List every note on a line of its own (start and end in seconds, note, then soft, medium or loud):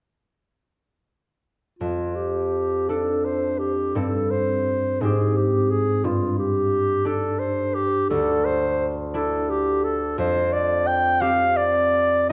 1.79 3.98 F2 soft
1.79 2.17 F4 soft
2.16 2.90 G4 soft
2.89 5.04 D4 soft
2.89 3.27 A4 soft
2.89 3.95 A4 soft
3.25 3.60 C5 soft
3.59 3.98 G4 soft
3.95 5.04 G2 soft
3.95 5.02 C4 soft
3.95 5.05 A4 soft
3.95 4.32 A4 soft
4.31 5.03 C5 soft
5.01 6.07 G#2 soft
5.01 6.07 C4 soft
5.01 7.05 G4 soft
5.01 5.38 G#4 soft
5.37 5.72 G4 soft
5.70 6.07 G#4 soft
6.04 8.13 G2 soft
6.04 6.38 F4 soft
6.39 7.08 G4 soft
7.05 9.13 D4 soft
7.05 8.14 G4 soft
7.05 7.41 A4 soft
7.39 7.76 C5 soft
7.75 8.09 G4 soft
8.10 10.20 D2 soft
8.10 8.47 A4 soft
8.45 8.90 C5 soft
9.14 12.32 D4 soft
9.14 10.20 E4 soft
9.14 9.52 A4 soft
9.50 9.85 G4 soft
9.84 10.18 A4 soft
10.18 12.32 F2 soft
10.18 10.55 C5 medium
10.53 10.89 D5 soft
10.87 11.23 G5 medium
11.21 12.32 C4 soft
11.21 12.32 G4 soft
11.21 11.58 F5 medium
11.57 12.29 D5 medium